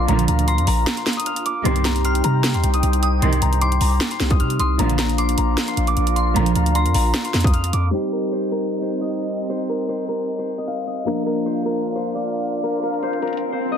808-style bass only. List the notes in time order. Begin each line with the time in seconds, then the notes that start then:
0.09 A#1
0.28 D2
0.58 F2
0.67 A#1
1.65 C2
2.24 C3
2.54 D#2
2.63 C2
2.83 C2
3.22 C2
3.42 C2
3.81 C2
4.20 C2
4.40 C3
4.60 C2
4.79 A#1
5.38 A#1
5.77 A#1
5.97 A#1
6.36 A#1
6.56 D2
6.86 F2
6.95 A#1
7.34 F2
7.73 F2